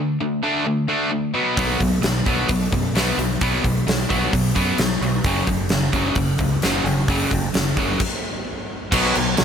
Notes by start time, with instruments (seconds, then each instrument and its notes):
Already playing: overdriven electric guitar D3 A3
0.20 overdriven electric guitar D3 A3
0.43 overdriven electric guitar D3 A3 D4
0.66 overdriven electric guitar D3 A3
0.88 overdriven electric guitar D3 A3 D4
1.11 overdriven electric guitar D3 A3
1.34 overdriven electric guitar B2 F#3 B3
1.57 fingered electric bass B1, overdriven electric guitar B2 F#3 B3, kick, open hi-hat
1.80 fingered electric bass B1, overdriven electric guitar B2 F#3, kick, open hi-hat
2.03 fingered electric bass B1, overdriven electric guitar B2 F#3, snare, open hi-hat
2.26 fingered electric bass B1, overdriven electric guitar B2 F#3 B3, kick, open hi-hat
2.49 fingered electric bass B1, overdriven electric guitar B2 F#3, kick, open hi-hat
2.72 fingered electric bass F#2, overdriven electric guitar B2 F#3, kick, open hi-hat
2.94 fingered electric bass B1, overdriven electric guitar B2 F#3 B3, snare, open hi-hat
3.18 fingered electric bass B1, overdriven electric guitar B2 F#3, open hi-hat
3.41 fingered electric bass B1, overdriven electric guitar B2 F#3 B3, kick, open hi-hat
3.64 fingered electric bass B1, overdriven electric guitar B2 F#3, kick, open hi-hat
3.87 fingered electric bass B1, overdriven electric guitar B2 F#3, snare, open hi-hat
4.09 fingered electric bass B1, overdriven electric guitar B2 F#3 B3, kick, open hi-hat
4.33 fingered electric bass B1, overdriven electric guitar B2 F#3, kick, open hi-hat
4.56 fingered electric bass F#2, overdriven electric guitar B2 F#3 B3, kick, open hi-hat
4.78 fingered electric bass B1, overdriven electric guitar B2 F#3, snare, open hi-hat
4.92 snare
5.01 fingered electric bass B1, overdriven electric guitar B2 F#3, open hi-hat
5.24 fingered electric bass F#1, overdriven electric guitar F#2 C#3 F#3, kick, open hi-hat
5.47 fingered electric bass F#1, overdriven electric guitar F#2 C#3, kick, open hi-hat
5.69 fingered electric bass F#1, overdriven electric guitar F#2 C#3, snare, open hi-hat
5.93 fingered electric bass F#1, overdriven electric guitar F#2 C#3 F#3, kick, open hi-hat
6.15 fingered electric bass F#1, overdriven electric guitar F#2 C#3, kick, open hi-hat
6.38 fingered electric bass C#2, overdriven electric guitar F#2 C#3, kick, open hi-hat
6.62 fingered electric bass F#1, overdriven electric guitar F#2 C#3 F#3, snare, open hi-hat
6.84 fingered electric bass F#1, overdriven electric guitar F#2 C#3, open hi-hat
7.08 fingered electric bass F#1, overdriven electric guitar F#2 C#3 F#3, kick, open hi-hat
7.31 fingered electric bass F#1, overdriven electric guitar F#2 C#3, kick, open hi-hat
7.54 fingered electric bass F#1, overdriven electric guitar F#2 C#3, snare, open hi-hat
7.77 fingered electric bass F#1, overdriven electric guitar F#2 C#3 F#3, kick, open hi-hat
8.00 kick, crash
8.92 fingered electric bass B1, overdriven electric guitar B2 F#3 B3, kick, crash
9.15 fingered electric bass B1, overdriven electric guitar B2 F#3, crash
9.37 fingered electric bass B1, overdriven electric guitar B2 F#3, snare, crash